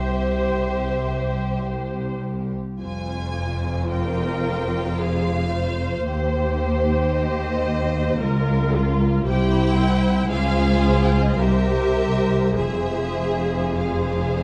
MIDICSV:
0, 0, Header, 1, 6, 480
1, 0, Start_track
1, 0, Key_signature, -4, "minor"
1, 0, Tempo, 1134216
1, 1186, Time_signature, 3, 2, 24, 8
1, 1657, Tempo, 1069519
1, 5017, Tempo, 1190476
1, 6238, End_track
2, 0, Start_track
2, 0, Title_t, "Violin section"
2, 0, Program_c, 0, 48
2, 0, Note_on_c, 0, 76, 48
2, 685, Note_off_c, 0, 76, 0
2, 1188, Note_on_c, 0, 80, 57
2, 1640, Note_off_c, 0, 80, 0
2, 1656, Note_on_c, 0, 79, 54
2, 2131, Note_off_c, 0, 79, 0
2, 2145, Note_on_c, 0, 77, 65
2, 2621, Note_on_c, 0, 72, 50
2, 2624, Note_off_c, 0, 77, 0
2, 3089, Note_off_c, 0, 72, 0
2, 3095, Note_on_c, 0, 75, 64
2, 3824, Note_off_c, 0, 75, 0
2, 4057, Note_on_c, 0, 79, 80
2, 4508, Note_off_c, 0, 79, 0
2, 4525, Note_on_c, 0, 77, 83
2, 4845, Note_off_c, 0, 77, 0
2, 4852, Note_on_c, 0, 79, 62
2, 4888, Note_on_c, 0, 77, 64
2, 4894, Note_off_c, 0, 79, 0
2, 4932, Note_off_c, 0, 77, 0
2, 4932, Note_on_c, 0, 75, 58
2, 4975, Note_off_c, 0, 75, 0
2, 4978, Note_on_c, 0, 77, 60
2, 5017, Note_on_c, 0, 76, 74
2, 5019, Note_off_c, 0, 77, 0
2, 5484, Note_off_c, 0, 76, 0
2, 5489, Note_on_c, 0, 76, 63
2, 5969, Note_off_c, 0, 76, 0
2, 5975, Note_on_c, 0, 77, 45
2, 6238, Note_off_c, 0, 77, 0
2, 6238, End_track
3, 0, Start_track
3, 0, Title_t, "Violin section"
3, 0, Program_c, 1, 48
3, 0, Note_on_c, 1, 67, 39
3, 0, Note_on_c, 1, 72, 35
3, 1082, Note_off_c, 1, 67, 0
3, 1082, Note_off_c, 1, 72, 0
3, 1188, Note_on_c, 1, 65, 40
3, 1189, Note_on_c, 1, 72, 40
3, 2605, Note_off_c, 1, 65, 0
3, 2620, Note_on_c, 1, 67, 49
3, 3567, Note_off_c, 1, 67, 0
3, 3569, Note_off_c, 1, 72, 0
3, 3579, Note_on_c, 1, 65, 53
3, 3579, Note_on_c, 1, 70, 49
3, 4039, Note_off_c, 1, 65, 0
3, 4039, Note_off_c, 1, 70, 0
3, 4058, Note_on_c, 1, 64, 64
3, 4059, Note_on_c, 1, 72, 58
3, 4508, Note_off_c, 1, 64, 0
3, 4508, Note_off_c, 1, 72, 0
3, 4531, Note_on_c, 1, 68, 61
3, 4531, Note_on_c, 1, 72, 59
3, 5011, Note_off_c, 1, 72, 0
3, 5015, Note_on_c, 1, 70, 51
3, 5019, Note_on_c, 1, 72, 52
3, 5020, Note_off_c, 1, 68, 0
3, 5479, Note_off_c, 1, 72, 0
3, 5487, Note_off_c, 1, 70, 0
3, 5488, Note_on_c, 1, 68, 47
3, 5490, Note_on_c, 1, 72, 44
3, 5970, Note_off_c, 1, 72, 0
3, 5978, Note_off_c, 1, 68, 0
3, 5985, Note_on_c, 1, 68, 42
3, 5985, Note_on_c, 1, 72, 45
3, 6238, Note_off_c, 1, 68, 0
3, 6238, Note_off_c, 1, 72, 0
3, 6238, End_track
4, 0, Start_track
4, 0, Title_t, "Viola section"
4, 0, Program_c, 2, 48
4, 0, Note_on_c, 2, 72, 52
4, 928, Note_off_c, 2, 72, 0
4, 1659, Note_on_c, 2, 70, 48
4, 2124, Note_off_c, 2, 70, 0
4, 2139, Note_on_c, 2, 68, 37
4, 2380, Note_on_c, 2, 72, 55
4, 2382, Note_off_c, 2, 68, 0
4, 3566, Note_off_c, 2, 72, 0
4, 3585, Note_on_c, 2, 70, 58
4, 3823, Note_on_c, 2, 65, 57
4, 3826, Note_off_c, 2, 70, 0
4, 4058, Note_on_c, 2, 67, 64
4, 4059, Note_off_c, 2, 65, 0
4, 4286, Note_off_c, 2, 67, 0
4, 4292, Note_on_c, 2, 64, 52
4, 4524, Note_on_c, 2, 65, 59
4, 4528, Note_off_c, 2, 64, 0
4, 5015, Note_on_c, 2, 67, 63
4, 5017, Note_off_c, 2, 65, 0
4, 5485, Note_on_c, 2, 68, 52
4, 5487, Note_off_c, 2, 67, 0
4, 6238, Note_off_c, 2, 68, 0
4, 6238, End_track
5, 0, Start_track
5, 0, Title_t, "Cello section"
5, 0, Program_c, 3, 48
5, 0, Note_on_c, 3, 36, 35
5, 1080, Note_off_c, 3, 36, 0
5, 1184, Note_on_c, 3, 41, 43
5, 2602, Note_off_c, 3, 41, 0
5, 2620, Note_on_c, 3, 39, 47
5, 3567, Note_off_c, 3, 39, 0
5, 3583, Note_on_c, 3, 37, 56
5, 4057, Note_on_c, 3, 36, 54
5, 4059, Note_off_c, 3, 37, 0
5, 4508, Note_off_c, 3, 36, 0
5, 4524, Note_on_c, 3, 37, 63
5, 5007, Note_off_c, 3, 37, 0
5, 5013, Note_on_c, 3, 36, 55
5, 5476, Note_off_c, 3, 36, 0
5, 5485, Note_on_c, 3, 41, 43
5, 6238, Note_off_c, 3, 41, 0
5, 6238, End_track
6, 0, Start_track
6, 0, Title_t, "Double bass section"
6, 0, Program_c, 4, 48
6, 0, Note_on_c, 4, 36, 41
6, 1080, Note_off_c, 4, 36, 0
6, 1188, Note_on_c, 4, 29, 38
6, 2605, Note_off_c, 4, 29, 0
6, 2623, Note_on_c, 4, 39, 44
6, 3568, Note_off_c, 4, 39, 0
6, 3587, Note_on_c, 4, 37, 49
6, 4061, Note_off_c, 4, 37, 0
6, 4061, Note_on_c, 4, 36, 52
6, 4510, Note_off_c, 4, 36, 0
6, 4527, Note_on_c, 4, 37, 59
6, 5008, Note_off_c, 4, 37, 0
6, 5016, Note_on_c, 4, 36, 50
6, 5478, Note_off_c, 4, 36, 0
6, 5489, Note_on_c, 4, 29, 46
6, 6238, Note_off_c, 4, 29, 0
6, 6238, End_track
0, 0, End_of_file